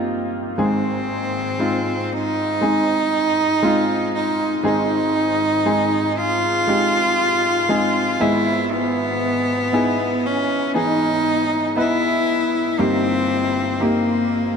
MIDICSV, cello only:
0, 0, Header, 1, 2, 480
1, 0, Start_track
1, 0, Key_signature, -4, "major"
1, 0, Tempo, 1016949
1, 272, Time_signature, 4, 2, 24, 8
1, 6876, End_track
2, 0, Start_track
2, 0, Title_t, "Cello"
2, 0, Program_c, 0, 42
2, 281, Note_on_c, 0, 60, 89
2, 1002, Note_on_c, 0, 63, 121
2, 1009, Note_off_c, 0, 60, 0
2, 1953, Note_off_c, 0, 63, 0
2, 1956, Note_on_c, 0, 63, 102
2, 2177, Note_off_c, 0, 63, 0
2, 2197, Note_on_c, 0, 63, 108
2, 2919, Note_on_c, 0, 65, 123
2, 2926, Note_off_c, 0, 63, 0
2, 3874, Note_on_c, 0, 64, 107
2, 3881, Note_off_c, 0, 65, 0
2, 4121, Note_on_c, 0, 59, 110
2, 4128, Note_off_c, 0, 64, 0
2, 4843, Note_on_c, 0, 61, 99
2, 4850, Note_off_c, 0, 59, 0
2, 5078, Note_off_c, 0, 61, 0
2, 5082, Note_on_c, 0, 63, 115
2, 5539, Note_off_c, 0, 63, 0
2, 5562, Note_on_c, 0, 64, 111
2, 6045, Note_on_c, 0, 60, 105
2, 6052, Note_off_c, 0, 64, 0
2, 6523, Note_on_c, 0, 58, 91
2, 6530, Note_off_c, 0, 60, 0
2, 6876, Note_off_c, 0, 58, 0
2, 6876, End_track
0, 0, End_of_file